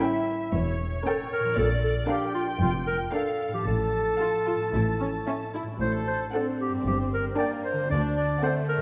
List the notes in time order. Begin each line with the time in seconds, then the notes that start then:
Already playing: A2 G3 A3 C#4 E4 A#4
0.02 C#4 A#4 E5 G5
0.54 E1 E2 C#5
1.06 C#4 A4 A#4 C#5 G5
1.33 A#4
1.40 A#2
1.44 F3
1.49 D4
1.58 A#1 A#2 A4 D5
1.84 A4
2.09 D4 G4 A#4 F5 G5
2.35 F4
2.60 F1 F2 F4
2.87 A#4
3.13 D4 A4 A#4 F5
3.48 A2
3.53 F3 G4
3.57 D4
3.62 A1 A2 F4 A5
3.67 A4
4.20 F4 F5
4.47 F4
4.55 A2
4.60 A3
4.64 C#4
4.69 A1 E4
4.73 A2 E4
5.00 C#4
5.27 C#4 E5
5.54 E4
5.63 A2
5.67 A3
5.72 D4
5.76 F#4
5.80 A1 A2 A4 C5
6.08 C5
6.34 C4 D4 A4 F#5
6.61 G4
6.69 G2
6.73 A#3
6.78 D4
6.82 G1 G4
6.87 G2 G4
7.14 A#4
7.38 A#3 D4 A#4 D5 G5
7.65 C5
7.73 D3
7.77 A3
7.82 D4
7.86 D2 F#4
7.90 D2 D4 D5
8.17 D5
8.42 A3 C4 A4 C5 F#5
8.69 A#4
8.76 G2